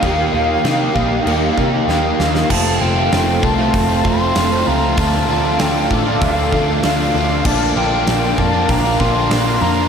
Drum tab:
CC |x---x---x-------|x---------------|----------------|x---------------|
HH |----------------|----o---o---o---|o---o---o---o---|----o---o---o---|
SD |----o-------o-oo|----o-------o---|----o-------o---|----o-------o---|
BD |o-----o---o-----|o-----o-o-o-----|o-----o-o-o-----|o-----o-o-o-----|